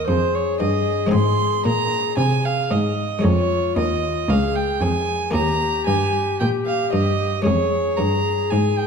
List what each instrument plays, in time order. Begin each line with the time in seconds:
Already playing: harpsichord F4 G#4
0.07 harpsichord F2, cello F2, recorder G#4, violin C5
0.35 violin C#5
0.60 harpsichord G2, cello G2, violin D#5
1.07 harpsichord G#3 C4 D#4
1.11 harpsichord G#2 G#4, cello G#2, violin C6
1.65 cello A#2, harpsichord A#2, violin A#5
2.17 cello C3, harpsichord C3, violin G#5
2.45 violin F5
2.71 harpsichord G#2, cello G#2, violin D#5
3.19 harpsichord G#3 C#4 G#4
3.24 harpsichord F2, cello F2, recorder F4, violin C#5
3.76 cello D#2, harpsichord D#2, violin D#5
4.28 cello C#2, harpsichord C#2, recorder G#4, violin F5
4.55 violin G5
4.81 cello F2, harpsichord F2, violin G#5
5.31 cello D#2, harpsichord A#3 D#4 G4, violin A#5
5.35 harpsichord D#2, recorder G4
5.87 cello G2, harpsichord G2, violin G#5
6.40 cello A#2, harpsichord A#2, violin G5
6.66 violin F5
6.93 harpsichord G2, cello G2, violin D#5
7.42 cello F2, harpsichord G#3 C#4 G#4, violin C#5
7.47 harpsichord F2, recorder G#4
7.97 harpsichord G2, cello G2, violin A#5
8.50 cello G#2, harpsichord G#2, violin G#5
8.78 violin G5